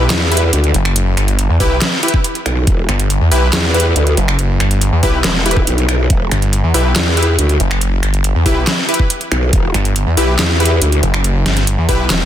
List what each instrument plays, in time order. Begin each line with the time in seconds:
0.10 wobble bass E2, snare, clap, closed hi-hat
0.32 supersaw synth E4 G4 B4, closed hi-hat
0.37 closed hi-hat
0.53 wobble bass D2, closed hi-hat
0.64 closed hi-hat
0.74 detuned saw bass F#1, closed hi-hat
0.85 finger snap
0.96 closed hi-hat
1.17 detuned saw bass G1, finger snap, closed hi-hat
1.28 closed hi-hat
1.39 closed hi-hat
1.49 detuned saw bass E2
1.60 detuned saw bass B1, supersaw synth E4 G4 B4, kick, open hi-hat
1.82 snare, clap, closed hi-hat
2.03 supersaw synth E4 G4 B4, closed hi-hat
2.08 closed hi-hat
2.14 kick
2.24 closed hi-hat
2.35 closed hi-hat
2.46 wobble bass B1, finger snap, closed hi-hat
2.67 wobble bass E1, kick, closed hi-hat
2.89 detuned saw bass G1, finger snap, closed hi-hat
3.00 closed hi-hat
3.10 closed hi-hat
3.21 detuned saw bass E2
3.31 detuned saw bass B1, supersaw synth E4 G4 B4, open hi-hat
3.53 wobble bass E2, snare, clap, closed hi-hat
3.74 supersaw synth E4 G4 B4, closed hi-hat
3.80 closed hi-hat
3.96 wobble bass D2, closed hi-hat
4.07 closed hi-hat
4.17 detuned saw bass F#1, closed hi-hat
4.28 finger snap
4.39 closed hi-hat
4.60 detuned saw bass G1, finger snap, closed hi-hat
4.71 closed hi-hat
4.81 closed hi-hat
4.92 detuned saw bass E2
5.03 detuned saw bass B1, supersaw synth E4 G4 B4, kick, open hi-hat
5.24 wobble bass E1, snare, clap, closed hi-hat
5.46 supersaw synth E4 G4 B4, closed hi-hat
5.51 closed hi-hat
5.57 kick
5.67 wobble bass B1, closed hi-hat
5.78 closed hi-hat
5.89 finger snap, closed hi-hat
6.10 wobble bass E1, kick, closed hi-hat
6.31 detuned saw bass G1, finger snap, closed hi-hat
6.42 closed hi-hat
6.53 closed hi-hat
6.64 detuned saw bass E2
6.74 detuned saw bass B1, supersaw synth E4 G4 B4, open hi-hat
6.96 wobble bass E2, snare, clap, closed hi-hat
7.17 supersaw synth E4 G4 B4, closed hi-hat
7.23 closed hi-hat
7.39 wobble bass D2, closed hi-hat
7.49 closed hi-hat
7.60 detuned saw bass F#1, closed hi-hat
7.71 finger snap
7.81 closed hi-hat
8.03 detuned saw bass G1, finger snap, closed hi-hat
8.14 closed hi-hat
8.24 closed hi-hat
8.35 detuned saw bass E2
8.46 detuned saw bass B1, supersaw synth E4 G4 B4, kick, open hi-hat
8.67 snare, clap, closed hi-hat
8.89 supersaw synth E4 G4 B4, closed hi-hat
8.94 closed hi-hat
8.99 kick
9.10 closed hi-hat
9.21 closed hi-hat
9.32 wobble bass B1, finger snap, closed hi-hat
9.53 wobble bass E1, kick, closed hi-hat
9.74 detuned saw bass G1, finger snap, closed hi-hat
9.85 closed hi-hat
9.96 closed hi-hat
10.07 detuned saw bass E2
10.17 detuned saw bass B1, supersaw synth E4 G4 B4, open hi-hat
10.39 wobble bass E2, snare, clap, closed hi-hat
10.60 supersaw synth E4 G4 B4, closed hi-hat
10.66 closed hi-hat
10.82 wobble bass D2, closed hi-hat
10.92 closed hi-hat
11.03 detuned saw bass F#1, closed hi-hat
11.14 finger snap
11.24 closed hi-hat
11.46 detuned saw bass G1, finger snap, snare, closed hi-hat
11.57 closed hi-hat
11.67 closed hi-hat
11.78 detuned saw bass E2
11.89 detuned saw bass B1, supersaw synth E4 G4 B4, kick, open hi-hat
12.10 detuned saw bass E1, snare, clap, closed hi-hat